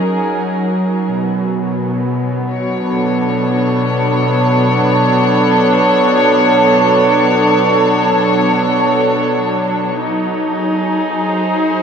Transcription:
Already playing: string section F#3 C#4 D#4 G#4 A#4, synth drone F#3
1.13 string section B2
1.59 string section B3
2.52 string section C#5
2.79 string section D4
2.83 string section A4
9.96 string section D#4
10.51 string section G#4
11.11 string section C5

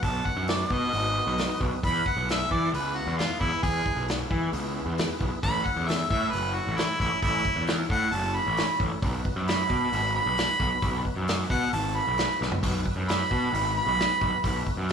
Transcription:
Already playing: tonewheel organ B3 D#4 F#4 B4
0.03 picked electric bass B1, harmonica A5, kick, open hi-hat
0.25 harmonica F#5, kick
0.37 picked electric bass F#2
0.48 harmonica D5, snare, open hi-hat
0.70 picked electric bass B2, harmonica D#5, kick
0.93 picked electric bass G#1, open hi-hat
1.27 picked electric bass B1
1.38 snare, open hi-hat
1.60 picked electric bass B1, kick
1.83 picked electric bass E2, tonewheel organ B3 E4 G#4 B4, harmonica B5, kick, open hi-hat
2.06 harmonica F#5, kick
2.17 picked electric bass B1
2.29 harmonica E5, snare, open hi-hat
2.51 picked electric bass E3, harmonica D5, kick
2.73 picked electric bass C#2, harmonica B4, open hi-hat
2.97 harmonica F#4
3.07 picked electric bass E2
3.18 harmonica F4, snare, open hi-hat
3.40 picked electric bass E2, harmonica E4, kick
3.63 picked electric bass E2, harmonica G#4, kick, open hi-hat
3.86 kick
3.96 picked electric bass B1
4.08 snare, open hi-hat
4.30 picked electric bass E3, kick
4.53 picked electric bass C#2, open hi-hat
4.86 picked electric bass E2
4.98 snare, open hi-hat
5.20 picked electric bass B1, kick
5.43 picked electric bass A1, tonewheel organ C#4 E4 A4 C#5, harmonica B5, kick, open hi-hat
5.66 harmonica F#5, kick
5.76 picked electric bass E2
5.88 harmonica E5, snare, open hi-hat
6.10 picked electric bass A2, harmonica E5, kick
6.32 picked electric bass F#1, harmonica B4, open hi-hat
6.54 harmonica F#4
6.67 picked electric bass A1
6.77 harmonica E4, snare, open hi-hat
7.00 picked electric bass A1, harmonica E4, kick
7.22 picked electric bass A1, harmonica E4, kick, open hi-hat
7.45 kick
7.56 picked electric bass E2
7.67 snare, open hi-hat
7.90 picked electric bass A2, harmonica F#5, kick
8.12 picked electric bass F#1, harmonica A5, open hi-hat
8.36 harmonica B5
8.46 picked electric bass A1
8.57 snare, open hi-hat
8.80 picked electric bass A1, kick
9.02 picked electric bass B1, tonewheel organ B3 D#4 F#4 B4, kick, open hi-hat
9.25 kick
9.36 picked electric bass F#2
9.48 harmonica B5, snare, open hi-hat
9.70 picked electric bass B2, kick
9.92 picked electric bass G#1, open hi-hat
10.16 harmonica B5
10.26 picked electric bass B1
10.37 snare, open hi-hat
10.60 picked electric bass B1, kick
10.82 picked electric bass B1, kick, open hi-hat
11.05 kick
11.16 picked electric bass F#2
11.28 snare, open hi-hat
11.50 picked electric bass B2, harmonica F#5, kick
11.73 picked electric bass G#1, harmonica A5, open hi-hat
11.96 harmonica B5
12.07 picked electric bass B1
12.18 snare, open hi-hat
12.41 picked electric bass B1, snare
12.52 floor tom
12.62 picked electric bass B1, tonewheel organ B3 D#4 F#4 B4, kick, open hi-hat, splash
12.86 kick
12.96 picked electric bass F#2
13.09 harmonica B5, snare, open hi-hat
13.31 picked electric bass B2, kick
13.53 picked electric bass G#1, open hi-hat
13.77 harmonica B5
13.86 picked electric bass B1
13.99 snare, open hi-hat
14.21 picked electric bass B1, kick
14.44 picked electric bass B1, kick, open hi-hat
14.67 kick
14.77 picked electric bass F#2
14.89 open hi-hat

